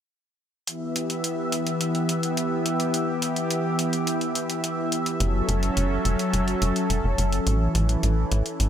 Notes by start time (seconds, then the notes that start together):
0.67 E3 B3 G4 E5, closed hi-hat
0.96 closed hi-hat
1.10 closed hi-hat
1.24 closed hi-hat
1.52 closed hi-hat
1.67 closed hi-hat
1.81 closed hi-hat
1.95 closed hi-hat
2.09 closed hi-hat
2.23 closed hi-hat
2.37 closed hi-hat
2.66 closed hi-hat
2.80 closed hi-hat
2.94 closed hi-hat
3.22 closed hi-hat
3.36 closed hi-hat
3.51 closed hi-hat
3.79 closed hi-hat
3.93 closed hi-hat
4.07 closed hi-hat
4.21 closed hi-hat
4.35 closed hi-hat
4.50 closed hi-hat
4.64 closed hi-hat
4.92 closed hi-hat
5.06 closed hi-hat
5.20 F#1 F#3 C#4 A4, closed hi-hat
5.49 F#1, closed hi-hat
5.63 closed hi-hat
5.77 F#1, closed hi-hat
6.05 F#1, closed hi-hat
6.19 closed hi-hat
6.34 F#1, closed hi-hat
6.48 closed hi-hat
6.62 F#1, closed hi-hat
6.76 closed hi-hat
6.90 F#1, closed hi-hat
7.04 F#1
7.18 F#1, closed hi-hat
7.32 closed hi-hat
7.47 A1 E3, closed hi-hat
7.75 A1, closed hi-hat
7.89 closed hi-hat
8.03 A1, closed hi-hat
8.32 A1, closed hi-hat
8.46 closed hi-hat
8.60 A1, closed hi-hat